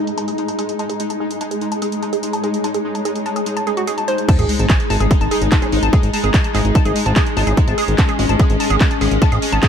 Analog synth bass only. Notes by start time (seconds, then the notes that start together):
4.39 G#1
4.59 G#1
4.90 G#1
5.00 G#1
5.21 G#1
5.42 G#1
5.72 G#1
5.83 G#1
6.03 G#1
6.24 G#1
6.55 G#1
6.65 G#1
6.85 G#1
7.06 G#1
7.37 G#1
7.47 G#1
7.68 G#1
7.88 G#1
8.19 G#1
8.29 G#1
8.50 G#1
8.70 G#1
9.01 G#1
9.11 G#1
9.32 G#1
9.53 G#1